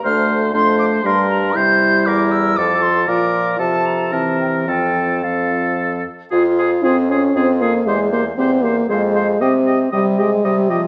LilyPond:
<<
  \new Staff \with { instrumentName = "Flute" } { \time 3/4 \key f \major \tempo 4 = 117 f'''8 r8 c'''8 d'''8 c'''8 bes''8 | g'''4 d'''8 e'''8 d'''8 c'''8 | d'''4 a''8 bes''8 a''8 g''8 | g''4 f''4. r8 |
\key f \minor c''8 c''8 c''8 c''8 c''8 c''8 | c''8 c''8 c''8 c''8 f''8 f''8 | g''8 g''8 g''8 g''8 g''8 g''8 | }
  \new Staff \with { instrumentName = "Oboe" } { \time 3/4 \key f \major c''4 c''4 bes'4 | c''4 bes'4 a'4 | bes'4 a'4 bes'4 | a'4 a'4. r8 |
\key f \minor aes'8 aes'8 aes'8 aes'8 aes'8 aes'8 | c''8 c''8 c''8 c''8 c''8 c''8 | ees''8 ees''8 ees''8 ees''8 ees''8 ees''8 | }
  \new Staff \with { instrumentName = "Clarinet" } { \time 3/4 \key f \major d'4 d'4 d'4 | e'2 f'4 | f'4 f'4 c'4 | c'4 c'4. r8 |
\key f \minor f'8 f'8 f'8 f'8 f'8 f'8 | g'8 g'8 g'8 g'8 aes'8 aes'8 | g'8 g'8 g'8 g'8 g'8 g'8 | }
  \new Staff \with { instrumentName = "French horn" } { \clef bass \time 3/4 \key f \major a4 a4 g4 | g2 f4 | f4 f4 e4 | f4 f4. r8 |
\key f \minor f'4 c'8 des'8 c'8 bes8 | aes8 bes8 c'8 bes8 aes4 | c'4 g8 aes8 g8 f8 | }
  \new Staff \with { instrumentName = "Bassoon" } { \clef bass \time 3/4 \key f \major d,4 f,4 g,4 | c4 e,4 f,4 | bes,4 c4 c4 | f,2~ f,8 r8 |
\key f \minor f,4 f,4 f,4 | e,4 e,4 f,4 | c4 c4 c4 | }
>>